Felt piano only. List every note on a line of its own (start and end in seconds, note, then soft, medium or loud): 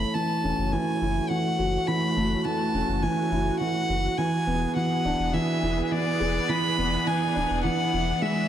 0.00 0.14 A3 medium
0.15 0.42 E3 medium
0.44 0.71 C#4 medium
0.73 1.00 E3 medium
1.02 1.29 E4 medium
1.30 1.58 E3 medium
1.59 1.86 F#4 medium
1.88 2.04 E3 medium
2.16 2.44 A3 medium
2.45 2.73 E3 medium
2.74 3.02 C#4 medium
3.03 3.31 E3 medium
3.32 3.59 E4 medium
3.61 3.88 E3 medium
3.90 4.17 F#4 medium
4.18 4.35 E3 medium
4.47 4.75 B3 medium
4.76 5.04 E3 medium
5.05 5.33 D4 medium
5.34 5.61 E3 medium
5.63 5.90 E4 medium
5.91 6.19 E3 medium
6.20 6.48 G#4 medium
6.49 6.66 E3 medium
6.78 7.05 B3 medium
7.07 7.34 E3 medium
7.35 7.63 D4 medium
7.64 7.92 E3 medium
7.93 8.10 E4 medium
8.22 8.48 G#3 medium